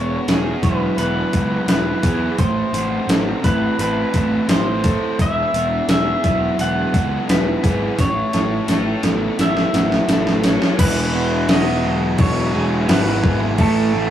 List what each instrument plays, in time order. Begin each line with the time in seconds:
Already playing: picked electric bass E1, distorted electric guitar E3 B3 E4, overdriven electric guitar E4, clean electric guitar C#5
0.28 picked electric bass E1, distorted electric guitar E4, overdriven electric guitar G#4, snare, open hi-hat
0.62 picked electric bass E1, distorted electric guitar F#3, overdriven electric guitar E4, clean electric guitar B4, kick, open hi-hat
0.98 picked electric bass E1, overdriven electric guitar B3, distorted electric guitar E4, clean electric guitar B4, open hi-hat
1.33 picked electric bass C#2, overdriven electric guitar F#3, distorted electric guitar B3, kick, open hi-hat
1.67 picked electric bass E1, distorted electric guitar E4, clean electric guitar B4, snare, open hi-hat
2.03 picked electric bass E2, distorted electric guitar G#4, kick, open hi-hat
2.38 picked electric bass A1, distorted electric guitar A3, clean electric guitar C5, kick, open hi-hat
2.73 picked electric bass A1, distorted electric guitar C4, open hi-hat
3.07 picked electric bass A1, distorted electric guitar E4, overdriven electric guitar A4, snare, open hi-hat
3.44 picked electric bass A1, distorted electric guitar A3, overdriven electric guitar E4, clean electric guitar B4, kick, open hi-hat
3.78 picked electric bass A1, overdriven electric guitar C4, distorted electric guitar E4, clean electric guitar B4, open hi-hat
4.14 picked electric bass A1, overdriven electric guitar A3, distorted electric guitar C4, kick, open hi-hat
4.48 picked electric bass A1, distorted electric guitar E4, clean electric guitar C5, snare, open hi-hat
4.84 distorted electric guitar A4, kick, open hi-hat
5.19 picked electric bass E1, distorted electric guitar E3, clean electric guitar E5, kick, open hi-hat
5.54 picked electric bass E1, distorted electric guitar B3, open hi-hat
5.88 picked electric bass E1, distorted electric guitar E4, overdriven electric guitar G#4, clean electric guitar E5, snare, open hi-hat
6.24 picked electric bass E1, distorted electric guitar F#3, overdriven electric guitar E4, kick, open hi-hat
6.59 picked electric bass E1, overdriven electric guitar B3, distorted electric guitar E4, clean electric guitar F#5, open hi-hat
6.93 picked electric bass C#2, overdriven electric guitar F#3, distorted electric guitar B3, kick, open hi-hat
7.29 picked electric bass E1, distorted electric guitar E4, clean electric guitar B4, snare, open hi-hat
7.63 picked electric bass G#1, distorted electric guitar G#4, kick, open hi-hat
7.98 picked electric bass A1, distorted electric guitar A3, clean electric guitar C#5, kick, snare, open hi-hat
8.33 picked electric bass A1, distorted electric guitar E4, snare, open hi-hat
8.68 picked electric bass A1, distorted electric guitar A4, overdriven electric guitar C#5, snare, open hi-hat
9.03 picked electric bass A1, distorted electric guitar B3, overdriven electric guitar A4, snare, open hi-hat
9.38 picked electric bass A1, overdriven electric guitar E4, distorted electric guitar A4, clean electric guitar E5, snare, open hi-hat
9.57 snare
9.73 picked electric bass A1, overdriven electric guitar B3, distorted electric guitar E4, snare, open hi-hat
9.92 snare
10.08 picked electric bass A1, distorted electric guitar A4, snare, open hi-hat
10.27 snare
10.43 distorted electric guitar C#5, snare, open hi-hat
10.62 snare
10.78 picked electric bass E1, overdriven electric guitar E2 B2 E3, distorted electric guitar E3, clean electric guitar B4, kick, crash
11.13 distorted electric guitar B3
11.49 picked electric bass E1, distorted electric guitar E4, clean electric guitar D#5, snare, crash
11.83 distorted electric guitar F#3
12.18 picked electric bass E1, distorted electric guitar B3, clean electric guitar C#5, kick, crash
12.53 picked electric bass E1, distorted electric guitar E4, overdriven electric guitar G#4
12.88 picked electric bass G#1, overdriven electric guitar E4, distorted electric guitar G#4, clean electric guitar B4, snare, crash
13.23 distorted electric guitar B3, overdriven electric guitar G#4, kick
13.58 picked electric bass A1, overdriven electric guitar A2 E3 A3, distorted electric guitar A3, clean electric guitar A4, kick, crash
13.93 picked electric bass A1, distorted electric guitar C4